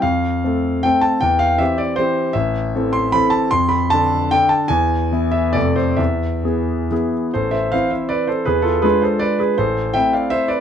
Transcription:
<<
  \new Staff \with { instrumentName = "Grand piano" } { \time 3/4 \key c \major \tempo 4 = 155 f''2 g''8 a''8 | g''8 f''8 e''8 d''8 c''4 | \key a \minor e''4. c'''8 b''8 a''8 | c'''8 b''8 a''4 g''8 a''8 |
gis''4. e''8 d''8 c''8 | e''2~ e''8 r8 | <a' c''>8 <c'' e''>8 <c'' f''>8 <c'' e''>8 <b' d''>8 <a' c''>8 | <gis' b'>8 <f' a'>8 <gis' b'>8 <a' c''>8 <b' d''>8 <gis' b'>8 |
<a' c''>4 <e'' g''>8 <d'' f''>8 <c'' e''>8 <b' d''>8 | }
  \new Staff \with { instrumentName = "Grand piano" } { \time 3/4 \key c \major f,4 <a c' a'>4 <a c' a'>4 | e,4 <e c' g'>4 <e c' g'>4 | \key a \minor a,,4 <e c' a'>4 <e c' a'>4 | f,4 <d d' a'>4 <d d' a'>4 |
e,4 <e b e'>4 <f, c a a'>4 | e,4 <e b gis'>4 <e b gis'>4 | a,,4 <e c' e'>2 | e,4 <gis d' f'>2 |
a,,4 <a c' e'>2 | }
>>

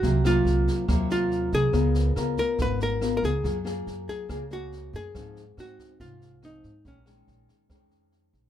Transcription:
<<
  \new Staff \with { instrumentName = "Hollow-body jazz guitar" } { \time 4/4 \key bes \minor \tempo 4 = 141 ges'8 f'4. r8 f'4 aes'8~ | aes'4. bes'8 ces''8 bes'8~ \tuplet 3/2 { bes'8 bes'16 aes'8.~ } | aes'4 r8 aes'4 ges'4 aes'8~ | aes'4 ges'4 f'4 ees'4 |
des'2. r4 | }
  \new Staff \with { instrumentName = "Nylon-string guitar" } { \time 4/4 \key bes \minor << { <ges bes f'>8 <ges bes f'>4. <ges bes f'>2 | <ces' f' bes'>4 <ces' f' bes'>2 <ces' f' bes'>8 r8 | <bes f' aes'>8 <bes f' aes'>4. <bes f' aes'>8 <bes aes'>4. | <f c' ees'>8 r8 <c' ees'>4. r8 <f c' ees'>8 r8 |
<ees aes des'>8 <ees aes des'>4. <ees aes des'>2 | } \\ { c2 c2 | des2 aes,2 | ges2 des2 | aes,2 aes,2 |
bes,2 f,2 | } >> }
  \new Staff \with { instrumentName = "Upright bass" } { \clef bass \time 4/4 \key bes \minor c,4 c,8 r8 ees,4. c,8 | des,4 des,8 r8 aes,,4. des,8 | ges,4 ges,8 r8 des,4. ges,8 | aes,4 aes,8 r8 c,4. aes,8 |
bes,,4 bes,,8 r8 f,4. bes,,8 | }
  \new DrumStaff \with { instrumentName = "Drums" } \drummode { \time 4/4 <bd sn>8 <ss sn>8 sn8 <bd sn>8 <bd ss sn>8 sn8 sn8 <bd sn>8 | <bd ss sn>8 sn8 <ss sn>8 <bd sn>8 <bd sn>8 sn8 <ss sn>8 <bd sn>8 | <bd sn>8 <ss sn>8 sn8 <bd sn>8 <bd ss sn>8 sn8 sn8 <bd sn>8 | <bd ss sn>8 sn8 <ss sn>8 <bd sn>8 <bd sn>8 sn8 <ss sn>8 <bd sn>8 |
<bd sn>8 <ss sn>8 sn8 <bd sn>8 <bd ss sn>8 sn8 sn8 <bd sn>8 | }
>>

